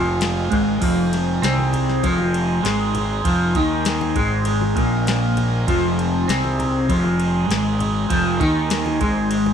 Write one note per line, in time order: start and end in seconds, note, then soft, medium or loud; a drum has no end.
0.00 0.48 F1 medium
0.00 0.50 F2 medium
0.00 0.50 F3 loud
0.00 9.53 G#3 medium
0.00 9.53 C4 medium
0.00 0.78 F4 medium
0.00 9.53 G#4 medium
0.21 snare loud
0.21 ride medium
0.50 0.80 G#1 medium
0.50 0.80 G#2 medium
0.50 0.81 G#3 loud
0.50 kick loud
0.50 ride medium
0.50 low conga medium
0.80 1.39 F1 medium
0.80 1.41 F2 loud
0.80 1.41 F3 loud
0.80 9.53 D#4 medium
0.80 kick loud
0.80 crash loud
1.13 snare soft
1.13 ride medium
1.42 1.99 C2 medium
1.42 2.02 C3 medium
1.42 2.02 C4 loud
1.42 snare loud
1.42 ride medium
1.58 high conga medium
1.73 ride medium
1.73 low conga medium
1.90 snare soft
2.03 2.60 F1 medium
2.03 2.62 F2 medium
2.03 2.63 F3 loud
2.03 kick loud
2.03 ride medium
2.03 high conga medium
2.18 high conga medium
2.34 ride medium
2.63 3.21 G#1 medium
2.63 3.23 G#2 medium
2.63 3.23 G#3 loud
2.63 snare loud
2.63 ride loud
2.94 ride medium
2.94 low conga medium
3.24 3.53 F1 medium
3.24 3.54 F2 medium
3.24 3.54 F3 loud
3.24 kick loud
3.24 ride loud
3.55 4.12 D#2 medium
3.55 4.15 D#3 medium
3.55 4.16 D#4 loud
3.55 kick loud
3.55 ride medium
3.85 snare loud
3.85 ride loud
4.01 high conga medium
4.16 4.72 G#1 medium
4.16 4.76 G#2 medium
4.16 4.76 G#3 loud
4.16 kick loud
4.16 ride medium
4.16 low conga medium
4.45 ride loud
4.45 high conga medium
4.61 high conga medium
4.76 5.64 A#1 medium
4.76 5.66 A#2 medium
4.76 5.66 A#3 medium
4.76 kick loud
4.76 ride medium
5.07 snare loud
5.07 ride medium
5.37 ride medium
5.37 low conga medium
5.67 6.24 F1 medium
5.67 6.27 F2 loud
5.67 6.27 F3 loud
5.67 kick loud
5.67 ride loud
5.99 ride medium
6.27 6.85 C2 medium
6.27 6.87 C3 medium
6.27 6.88 C4 loud
6.27 snare loud
6.27 ride medium
6.44 high conga medium
6.59 ride medium
6.59 low conga medium
6.88 7.46 F1 loud
6.88 7.48 F2 medium
6.88 7.48 F3 loud
6.88 kick loud
6.88 ride medium
6.88 high conga medium
7.04 high conga medium
7.20 ride medium
7.48 8.06 G#1 medium
7.48 8.08 G#2 medium
7.48 8.08 G#3 loud
7.48 snare loud
7.48 ride medium
7.79 ride medium
7.79 low conga medium
8.09 8.39 F1 medium
8.09 8.39 F2 loud
8.09 8.39 F3 loud
8.09 kick loud
8.09 ride loud
8.40 8.97 D#2 medium
8.40 9.00 D#3 medium
8.40 9.00 D#4 loud
8.40 kick loud
8.40 ride medium
8.70 snare loud
8.70 ride loud
8.86 high conga medium
9.00 9.53 G#1 medium
9.00 9.53 G#2 medium
9.00 9.53 G#3 loud
9.00 kick loud
9.00 ride medium
9.00 low conga medium
9.31 ride loud
9.46 high conga medium